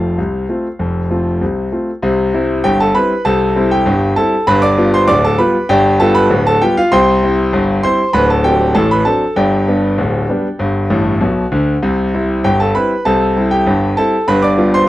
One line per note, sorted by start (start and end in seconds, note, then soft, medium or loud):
0.00 0.20 F1 medium
0.00 0.20 F2 medium
0.00 0.20 A3 soft
0.00 0.20 C4 soft
0.00 0.20 F4 soft
0.00 1.69 C5 soft
0.00 1.73 F5 medium
0.18 0.44 C2 medium
0.18 0.44 C3 medium
0.49 0.66 A3 soft
0.49 0.66 C4 soft
0.49 0.66 F4 soft
0.79 1.06 F1 medium
0.79 1.06 F2 medium
1.10 1.27 A3 soft
1.10 1.27 C4 soft
1.10 1.28 F4 soft
1.41 1.68 C2 medium
1.41 1.68 C3 medium
1.72 1.89 A3 soft
1.72 1.89 C4 soft
1.72 1.89 F4 soft
2.03 2.29 C2 medium
2.03 2.29 C3 medium
2.34 2.51 G3 medium
2.34 2.51 C4 medium
2.34 2.51 E4 medium
2.64 2.90 G1 medium
2.64 2.90 G2 medium
2.64 2.79 G4 medium
2.64 2.79 G5 loud
2.80 2.95 A4 medium
2.80 2.95 A5 medium
2.95 3.12 G3 medium
2.95 3.12 C4 medium
2.95 3.12 E4 medium
2.95 3.24 B4 medium
2.95 3.25 B5 loud
3.25 3.51 C2 medium
3.25 3.51 C3 medium
3.25 3.68 A4 medium
3.25 3.71 A5 loud
3.56 3.73 G3 medium
3.56 3.73 C4 medium
3.56 3.73 E4 medium
3.71 4.14 G4 medium
3.71 4.17 G5 loud
3.86 4.12 G1 medium
3.86 4.12 G2 medium
4.16 4.33 G3 medium
4.16 4.34 C4 medium
4.16 4.34 E4 medium
4.16 4.46 A4 medium
4.16 4.47 A5 loud
4.47 4.73 G1 medium
4.47 4.73 G2 loud
4.47 4.62 B4 loud
4.47 4.62 B5 loud
4.62 4.91 D5 medium
4.62 4.93 D6 loud
4.78 4.94 G3 medium
4.78 4.95 B3 medium
4.78 4.95 F4 medium
4.94 5.08 C5 medium
4.94 5.09 C6 loud
5.08 5.34 D1 medium
5.08 5.34 D2 medium
5.08 5.23 D5 medium
5.08 5.23 D6 loud
5.25 5.39 A4 medium
5.25 5.39 A5 loud
5.38 5.55 G3 medium
5.38 5.56 B3 medium
5.38 5.56 F4 medium
5.38 5.68 B4 medium
5.38 5.69 B5 loud
5.69 5.95 G1 medium
5.69 5.95 G2 loud
5.69 5.98 G4 medium
5.69 5.98 D5 medium
5.69 6.00 G5 loud
6.00 6.17 G3 medium
6.00 6.17 B3 medium
6.00 6.17 F4 medium
6.00 6.14 A4 medium
6.00 6.15 A5 loud
6.15 6.44 B4 medium
6.15 6.45 B5 loud
6.30 6.56 D1 medium
6.30 6.56 D2 medium
6.47 6.61 A4 medium
6.47 6.62 A5 loud
6.62 6.79 G3 medium
6.62 6.79 B3 medium
6.62 6.77 F4 medium
6.62 6.76 G4 medium
6.62 6.77 G5 loud
6.77 6.92 F4 medium
6.77 6.92 F5 loud
6.92 7.18 C2 loud
6.92 7.18 C3 medium
6.92 7.80 C5 medium
6.92 7.80 G5 medium
6.92 7.82 C6 loud
7.23 7.39 G3 medium
7.23 7.40 C4 medium
7.23 7.40 E4 medium
7.53 7.79 G1 medium
7.53 7.79 G2 medium
7.83 8.00 G3 medium
7.83 8.00 C4 medium
7.83 8.01 E4 medium
7.83 8.12 C5 medium
7.83 8.14 C6 loud
8.13 8.40 D1 medium
8.13 8.40 D2 loud
8.13 8.28 B4 medium
8.13 8.29 B5 loud
8.30 8.45 A4 medium
8.30 8.45 A5 medium
8.44 8.61 F#3 medium
8.44 8.62 C4 medium
8.44 8.62 D4 medium
8.44 8.73 G4 medium
8.44 8.75 G5 loud
8.75 9.01 A1 medium
8.75 9.01 A2 medium
8.75 8.90 A4 medium
8.75 8.90 A5 loud
8.91 9.06 B4 medium
8.91 9.06 B5 loud
9.05 9.22 F#3 medium
9.05 9.23 C4 medium
9.05 9.23 D4 medium
9.05 9.35 A4 medium
9.05 9.36 A5 medium
9.36 9.63 G1 medium
9.36 9.62 G2 medium
9.36 11.48 G4 medium
9.36 11.48 D5 medium
9.36 11.52 G5 medium
9.68 9.85 G3 soft
9.68 9.85 B3 medium
9.68 9.85 D4 medium
9.98 10.24 D1 medium
9.98 10.24 D2 medium
10.29 10.46 G3 medium
10.29 10.46 B3 soft
10.29 10.47 D4 medium
10.59 10.86 G1 medium
10.59 10.86 G2 medium
10.90 11.13 A1 medium
10.90 11.13 A2 medium
11.21 11.44 B1 medium
11.21 11.44 B2 medium
11.52 11.75 D2 medium
11.52 11.75 D3 medium
11.83 12.09 C2 medium
11.83 12.09 C3 medium
12.14 12.31 G3 soft
12.14 12.31 C4 soft
12.14 12.31 E4 medium
12.44 12.70 G1 medium
12.44 12.70 G2 medium
12.44 12.59 G4 medium
12.44 12.60 G5 loud
12.60 12.75 A4 medium
12.60 12.75 A5 medium
12.75 12.92 G3 soft
12.75 12.92 C4 medium
12.75 12.92 E4 medium
12.75 13.04 B4 medium
12.75 13.05 B5 loud
13.05 13.32 C2 medium
13.05 13.32 C3 medium
13.05 13.48 A4 medium
13.05 13.51 A5 loud
13.36 13.53 G3 medium
13.36 13.54 C4 medium
13.36 13.54 E4 medium
13.51 13.94 G4 medium
13.51 13.97 G5 medium
13.66 13.92 G1 medium
13.66 13.92 G2 medium
13.97 14.14 G3 medium
13.97 14.14 C4 medium
13.97 14.15 E4 medium
13.97 14.26 A4 medium
13.97 14.27 A5 loud
14.28 14.54 G1 medium
14.28 14.54 G2 loud
14.28 14.42 B4 medium
14.28 14.43 B5 loud
14.42 14.72 D5 medium
14.42 14.73 D6 loud
14.58 14.74 G3 medium
14.58 14.75 B3 medium
14.58 14.75 F4 medium
14.74 14.88 C5 medium
14.74 14.88 C6 loud